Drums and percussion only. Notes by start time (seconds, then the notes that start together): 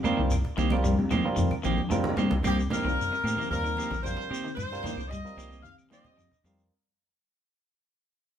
0.04 cajon slap, low conga, shekere
0.21 cajon slap
0.30 cajon bass, claves, shekere
0.45 cajon bass
0.58 cajon bass, cajon slap, shekere
0.70 high conga, claves
0.83 cajon slap, high conga, shekere
0.99 low conga
1.11 cajon bass, high conga, low conga, claves, shekere
1.24 cajon slap
1.37 cajon bass, cajon slap, shekere
1.51 cajon bass, claves
1.64 cajon slap, high conga, shekere
1.78 high conga
1.90 cajon slap, low conga, claves, shekere
2.04 low conga
2.17 cajon slap, low conga, shekere
2.31 cajon slap, low conga
2.43 cajon bass, cajon slap, high conga, low conga, claves, shekere
2.58 cajon slap, shekere
2.70 cajon bass, cajon slap, high conga, low conga, shekere
2.85 claves
2.89 shekere
2.97 cajon slap, high conga
3.01 shekere
3.15 shekere
3.24 claves, shekere
3.37 high conga
3.42 shekere
3.50 high conga, shekere
3.64 claves, shekere
3.77 high conga, shekere
3.90 cajon bass, cajon slap, shekere
4.03 cajon slap, high conga, claves, shekere
4.17 cajon slap
4.21 shekere
4.34 shekere
4.44 cajon slap, shekere
4.57 cajon bass, high conga, low conga, claves, shekere
4.71 cajon slap, shekere
4.83 cajon bass, cajon slap, high conga, low conga, shekere
4.97 claves, shekere
5.10 cajon bass, cajon slap, high conga, shekere
5.26 shekere
5.38 claves, shekere
5.51 high conga, shekere
5.65 high conga, shekere
5.78 claves, shekere
5.91 high conga, shekere
6.05 cajon bass, cajon slap, shekere
6.18 high conga, claves, shekere
6.31 cajon bass, cajon slap, shekere
6.45 shekere
6.59 shekere